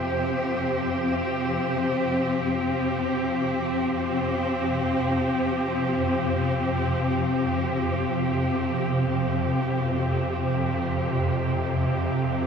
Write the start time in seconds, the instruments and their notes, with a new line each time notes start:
Already playing: synth drone F2 C3, cello section F3 C4 G4, ambient pad C5
1.49 synth drone F2 C3